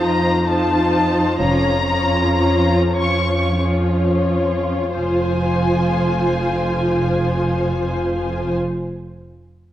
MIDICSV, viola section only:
0, 0, Header, 1, 2, 480
1, 0, Start_track
1, 0, Key_signature, -4, "minor"
1, 0, Tempo, 914634
1, 730, Time_signature, 6, 3, 24, 8
1, 730, Tempo, 1027397
1, 1210, Tempo, 1181102
1, 1690, Tempo, 1360544
1, 2170, Tempo, 1304348
1, 3925, End_track
2, 0, Start_track
2, 0, Title_t, "Viola section"
2, 0, Program_c, 0, 48
2, 0, Note_on_c, 0, 53, 37
2, 0, Note_on_c, 0, 63, 37
2, 224, Note_off_c, 0, 53, 0
2, 224, Note_off_c, 0, 63, 0
2, 236, Note_on_c, 0, 53, 43
2, 236, Note_on_c, 0, 63, 44
2, 718, Note_off_c, 0, 53, 0
2, 718, Note_off_c, 0, 63, 0
2, 732, Note_on_c, 0, 53, 36
2, 734, Note_on_c, 0, 61, 40
2, 957, Note_off_c, 0, 53, 0
2, 957, Note_off_c, 0, 61, 0
2, 963, Note_on_c, 0, 53, 39
2, 963, Note_on_c, 0, 61, 37
2, 1675, Note_off_c, 0, 53, 0
2, 1675, Note_off_c, 0, 61, 0
2, 1690, Note_on_c, 0, 61, 32
2, 1692, Note_on_c, 0, 53, 36
2, 2161, Note_off_c, 0, 61, 0
2, 2162, Note_off_c, 0, 53, 0
2, 2169, Note_on_c, 0, 65, 36
2, 2171, Note_on_c, 0, 53, 36
2, 3481, Note_off_c, 0, 65, 0
2, 3483, Note_off_c, 0, 53, 0
2, 3925, End_track
0, 0, End_of_file